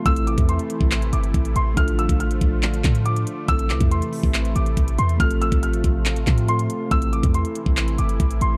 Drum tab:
HH |xxxxxxx-xxxxxxx-|xxxxxxx-xxxxxxx-|xxxxxxo-xxxxxxxx|xxxxxxx-xxxxxxx-|
CP |--------x-------|--------x-x-----|--x-----x-------|--------x-x-----|
BD |o--o---o----o---|o--o--o---o-----|o--o---o----o---|o--o--o---o-----|

HH |xxxxxxx-xxxxxxx-|
CP |--------x-------|
BD |o--o---o----o---|